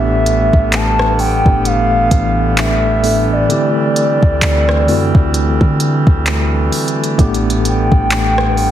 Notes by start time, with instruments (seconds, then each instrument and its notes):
Already playing: 808-style bass A1, tine electric piano A2 A3 B3 D4 G4, woodwind section D3 E3 G3 A3 B3, soft synth lead E5
0.26 closed hi-hat
0.53 808-style bass A1, kick
0.72 soft synth lead A5, clap, closed hi-hat
0.99 cross-stick
1.19 soft synth lead G5, open hi-hat
1.44 808-style bass G1, tine electric piano A2 A3 B3 D4 G4, kick
1.65 soft synth lead F5, closed hi-hat
2.10 808-style bass A1, tine electric piano A2 E3 A3 B3 D4, kick, closed hi-hat
2.57 soft synth lead E5, clap, closed hi-hat
3.02 tine electric piano A2 A3 B3 D4 A4, open hi-hat
3.32 soft synth lead D5
3.48 tine electric piano D3 A3 C4 E4 G4, woodwind section C4, closed hi-hat
3.96 closed hi-hat
4.22 808-style bass D2, kick
4.42 808-style bass D2, clap, closed hi-hat
4.69 cross-stick
4.87 808-style bass F#2, tine electric piano D3 A3 C4 E4 F#4, open hi-hat
5.15 808-style bass D2, kick
5.34 closed hi-hat
5.61 808-style bass D3, kick
5.80 closed hi-hat
6.07 808-style bass D2, kick
6.26 clap, closed hi-hat
6.72 closed hi-hat, open hi-hat
6.88 closed hi-hat
7.04 closed hi-hat
7.17 808-style bass A1, tine electric piano A2 A3 B3 D4 G4, woodwind section B3, kick, closed hi-hat
7.34 closed hi-hat
7.50 closed hi-hat
7.65 soft synth lead G5, closed hi-hat
7.92 808-style bass A1, kick
8.11 clap, closed hi-hat
8.38 cross-stick
8.57 open hi-hat